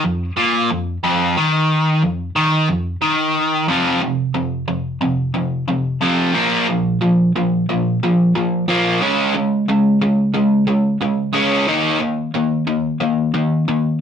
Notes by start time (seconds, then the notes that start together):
0.04 F2
0.37 A#2
0.71 F2
1.04 F2
1.37 D#3
2.03 F2
2.36 D#3
2.68 F2
3.02 D#3
3.68 F2 C3 F3
4.02 F2 C3
4.34 F2 C3
4.68 F2 C3
5.01 F2 C3
5.34 F2 C3
5.68 F2 C3
6.01 F2 C3 F3
6.34 A#2 F3 A#3
6.68 A#2 F3
7.01 A#2 F3
7.36 A#2 F3
7.69 A#2 F3
8.03 A#2 F3
8.35 A#2 F3
8.68 A#2 F3 A#3
9.01 C#3 G#3 C#4
9.34 C#3 G#3
9.68 C#3 G#3
10.01 C#3 G#3
10.34 C#3 G#3
10.68 C#3 G#3
11.02 C#3 G#3
11.33 C#3 G#3 C#4
11.68 D#3 A#3 D#4
12.01 D#3 A#3
12.35 D#3 A#3
12.67 D#3 A#3
13.00 D#3 A#3
13.34 D#3 A#3
13.68 D#3 A#3